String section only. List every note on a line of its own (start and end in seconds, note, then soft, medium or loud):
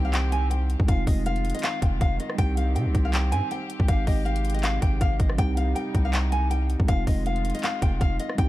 0.00 0.87 D#3 medium
0.00 0.87 C4 medium
0.00 0.87 G4 medium
0.88 3.85 D#3 medium
0.88 2.37 G#3 medium
0.88 2.37 F4 medium
2.39 3.87 C4 medium
2.39 5.35 G4 loud
3.89 6.86 C3 medium
3.89 5.37 G#3 medium
5.39 6.87 G3 medium
5.39 6.87 D#4 medium
6.89 8.37 D#3 medium
6.89 8.37 G#3 medium
6.89 8.37 F4 medium
8.38 8.49 C3 medium
8.38 8.49 G3 medium
8.38 8.49 D#4 medium